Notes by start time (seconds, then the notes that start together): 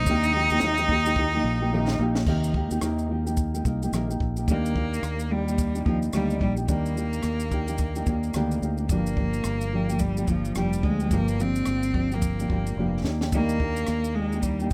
Already playing: D#4
0.06 D#2 C3 D#3 A#3 D#4 G4 A#4, kick, shaker
0.23 shaker
0.34 A#3 D#4 G4 A#4
0.50 D#2 D#4 G4 A#4, shaker
0.54 A#3
0.60 D#2 C3 D#3 A#3 D#4 G4 A#4, snare, shaker
0.77 A#3 D#4 G4 A#4, shaker
0.89 A#3 D#4 G4 A#4, kick
1.06 A#3 D#4 G4 A#4, shaker
1.16 A#3 D#4 A#4, kick
1.20 G4
1.34 A#3 D#4 G4 A#4
1.44 A#1
1.62 A#3 D#4 G4 A#4
1.72 C3 D#3 A#3 D#4 G4 A#4
1.88 snare
1.99 A#1 A#3 D#4 G4 A#4
2.15 snare
2.26 D#2 C3 D#3 A#3 D#4 G4 A#4, kick, crash
2.44 shaker
2.54 A#3 D#4 G4 A#4, kick
2.71 D#2 A#3 D#4 G4 A#4, shaker
2.81 D#2 C3 D#3 A#3 D#4 G4 A#4, cross-stick, shaker
2.99 shaker
3.10 A#3 D#4 G4 A#4
3.26 A#3 D#4 G4 A#4, shaker
3.37 kick, shaker
3.54 A#3 D#4 G4 A#4, shaker
3.65 C2 A#3 D#4 G4 A#4, kick, shaker
3.83 A#3 D#4 G4 A#4, shaker
3.92 A#1 C3 D#3 A#3 D#4 G4 A#4, cross-stick, shaker
4.10 A#3 D#4 G4 A#4, shaker
4.20 A#1, kick
4.37 A#3 D#4 G4 A#4, shaker
4.48 D#2 D#3 G3 A#3 D4 D#4 G4, kick, shaker
4.66 shaker
4.76 A#3 D4 D#4 G4, kick
4.94 shaker
5.03 D#2, cross-stick, shaker
5.19 shaker
5.30 G3 A#3 D4 D#4 G4
5.47 A#3 D4 D#4 G4, shaker
5.58 kick, shaker
5.75 A#3 D4 D#4 G4, shaker
5.85 D#2 F3 A#3 D4 D#4, kick
5.89 G4
6.02 shaker
6.13 D2 D#3 G3 A#3 D4 D#4 G4, cross-stick, shaker
6.30 shaker
6.40 A#1 G3 A#3 D4 D#4 G4, kick
6.57 A#3 D4 D#4 G4, shaker
6.67 D#2 D#3 G3 A#3 D4 D#4 G4, kick, shaker
6.86 shaker
6.96 A#3 D4 D#4 G4, shaker
7.13 shaker
7.23 D#2, cross-stick, shaker
7.40 shaker
7.51 A#3 D4 D#4 G4, kick, shaker
7.68 A#3 D4 D#4 G4, shaker
7.78 kick, shaker
7.96 A#3 D4 D#4 G4, shaker
8.06 D#2 A#3 D4 D#4 G4, kick, shaker
8.23 shaker
8.34 D2 D#3 G3 A#3 D4 D#4 G4, cross-stick, shaker
8.51 shaker
8.62 D2 A#3 D4 D#4 G4, shaker
8.77 A#3 D4 D#4 G4, shaker
8.89 G1 G2 F3 G3 A#3 D4 G4, kick, shaker
9.06 shaker
9.17 F3 A#3 D4 G4, kick
9.34 shaker
9.44 G1, cross-stick, shaker
9.61 shaker
9.73 F3 A#3 D4 G4
9.89 F3 A#3 D4 G4, shaker
9.99 G3, kick, shaker
10.17 F3 A#3 D4 G4, shaker
10.27 G1 F3 A#3 D4 G4, kick, shaker
10.45 shaker
10.55 F1 G2 F3 G3 A#3 D4 G4, cross-stick, shaker
10.73 shaker
10.83 D2 F3 G#3 A#3 D4 G4, kick, cross-stick
11.00 F3 A#3 D4 G4, shaker
11.11 G1 G2 F3 G3 A#3 D4 G4, kick, shaker
11.28 shaker
11.40 F3 A#3 C4 D4 G4, shaker
11.56 shaker
11.66 G1, cross-stick, shaker
11.83 shaker
11.93 F3 A#3 D4 G4, kick
12.12 F3 A#3 D4 G4, shaker
12.22 kick, shaker
12.40 F3 A#3 D4 G4, shaker
12.49 G1 F3 A#3 D4 G4, kick
12.67 shaker
12.77 F1 G2 F3 G3 A#3 D4 G4
13.04 D#2 A#3 D4 D#4 G4, snare
13.21 A#3 D4 D#4 G4, snare
13.32 D#3 G3 A#3 D4 D#4 G4, kick, shaker
13.49 shaker
13.60 A#3 D4 D#4 G4, kick
13.76 shaker
13.87 D#2, cross-stick, shaker
14.04 shaker
14.15 G#3 A#3 D4 D#4
14.19 G4
14.32 A#3 D4 D#4 G4, shaker
14.43 G3, kick, shaker
14.60 A#3 D4 D#4 G4, shaker